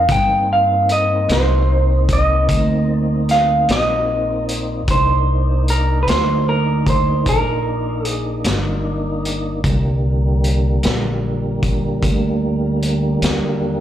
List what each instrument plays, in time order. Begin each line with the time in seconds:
Already playing: clean electric guitar F5
0.09 upright bass G2, tonewheel organ A#3 C4 D#4, clean electric guitar G5, kick, closed hi-hat
0.53 clean electric guitar F5
0.89 clean electric guitar D#5, closed hi-hat
1.29 upright bass C2, clean electric guitar C5, snare, closed hi-hat
2.09 kick, closed hi-hat
2.13 clean electric guitar D#5
2.49 upright bass D2, kick, closed hi-hat
2.93 clean electric guitar D5
3.29 clean electric guitar F5, snare, closed hi-hat
3.69 upright bass A#1, clean electric guitar D#5, snare, closed hi-hat
4.46 clean electric guitar D5, closed hi-hat
4.88 upright bass C2, tonewheel organ A#3 D4 D#4, clean electric guitar C5, kick, closed hi-hat
5.68 clean electric guitar A#4, closed hi-hat
6.03 clean electric guitar B4
6.07 upright bass D2, clean electric guitar C5, snare, closed hi-hat
6.49 clean electric guitar A#4
6.87 clean electric guitar C5, kick, closed hi-hat
7.26 upright bass A#1, clean electric guitar A#4, kick, closed hi-hat
8.05 clean electric guitar G#4, closed hi-hat
8.44 upright bass G1, snare, closed hi-hat
9.25 closed hi-hat
9.64 upright bass C2, tonewheel organ D3 G3 A#3, kick, closed hi-hat
10.44 closed hi-hat
10.83 upright bass A#1, snare, closed hi-hat
11.63 kick, closed hi-hat
12.02 upright bass D2, kick, closed hi-hat
12.82 closed hi-hat
13.22 upright bass D#2, snare, closed hi-hat